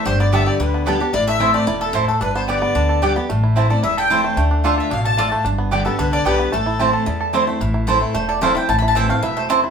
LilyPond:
<<
  \new Staff \with { instrumentName = "Fiddle" } { \time 4/4 \key a \minor \tempo 4 = 222 c''8 d''8 e''8 d''8 b'4 r4 | d''8 e''4 d''4 a'4 a'8 | b'8 c''8 d''2~ d''8 r8 | r4. d''8 e''8 g''4. |
r4. e''8 f''8 a''4. | r4. a'8 b'8 d''8 b'4 | a'2. r4 | r1 |
r1 | }
  \new Staff \with { instrumentName = "Mandolin" } { \time 4/4 \key a \minor c''8 d''8 e''8 d''8 b'4 r4 | d''8 e''4 d''4 a'4 a'8 | b'8 c''8 d''2~ d''8 r8 | r4. d''8 e''8 g''4. |
r4. e''8 f''8 a''4. | r4. a'8 b'8 d''8 b'4 | a'2. r4 | r2 c''8 d''8 f''8 g''8 |
\tuplet 3/2 { a''8 b''8 a''8 } g''8 f''8 e''8 c''8 r4 | }
  \new Staff \with { instrumentName = "Mandolin" } { \time 4/4 \key a \minor r4 <b g' d'' g''>8 r4. <b g' d'' g''>8 r8 | r4 <c' e' c'' a''>8 r4. <c' e' c'' a''>8 r8 | r4 <b g' d'' g''>8 r4. <b g' d'' g''>8 r8 | r4 <c' e' c'' a''>8 r4. <c' e' c'' a''>8 r8 |
r4 <a f' d'' a''>8 r4. <a f' d'' a''>8 r8 | r4 <b g' d'' g''>8 r4. <b g' d'' g''>8 r8 | r4 <c' e' c'' a''>8 r4. <c' e' c'' a''>8 r8 | r4 <c' e' c'' a''>8 r4. <c' e' c'' a''>8 r8 |
r4 <c' e' c'' a''>8 r4. <c' e' c'' a''>8 r8 | }
  \new Staff \with { instrumentName = "Five-string banjo" } { \time 4/4 \key a \minor g'8 b8 a'8 g'8 g8 b8 a'8 d'8 | e'8 a8 e'8 a8 e'8 a'8 e'8 a8 | d'8 b8 g'8 b8 d'8 a'8 g'8 b8 | a8 e'8 e'8 a'8 e'8 a'8 e'8 a8 |
a8 d'8 f'8 a'8 d'8 a'8 f'8 a8 | d'8 b8 g'8 b8 d'8 a'8 g'8 b8 | a8 e'8 e'8 a'8 e'8 a'8 e'8 a8 | e'8 e'8 a'8 e'8 a8 a'8 a8 e'8 |
e'8 e'8 e8 a8 e'8 a8 e'8 e'8 | }
  \new Staff \with { instrumentName = "Steel-string acoustic guitar" } { \time 4/4 \key a \minor << { r4 <d g b g'>4 r4 <d g b g'>8 <b g'>8 | r4 <e a c' e'>4 r2 | r4 <d g b g'>4 r4 <d g b g'>8 <b g'>8 | r4 <e a c' e'>8 <c' e'>8 r4 <e a c' e'>4 |
r4 <d a d' f'>4 r2 | r4 <d g b g'>8 <b g'>8 r4 <d g b g'>4 | r4 <e a c' e'>4 r4 <e a c' e'>8 <c' e'>8 | r4 <e a c' e'>4 r4 <e a c' e'>8 <c' e'>8 |
r4 <e a c' e'>8 <c' e'>8 r2 | } \\ { g,2 d2 | a,2 b,4 a,4 | g,2 d2 | a,2 e,2 |
d2 b,4 a,4 | g,2 d2 | a,2 e,2 | a,2 e,2 |
a,2 b,4 c4 | } >> }
  \new Staff \with { instrumentName = "Upright bass" } { \clef bass \time 4/4 \key a \minor g,,2 d,2 | a,,2 e,,2 | g,,2 d,2 | a,,2 e,,2 |
d,2 a,,2 | g,,2 c,4 b,,4 | a,,2 e,2 | a,,2 e,,2 |
a,,2 e,,2 | }
>>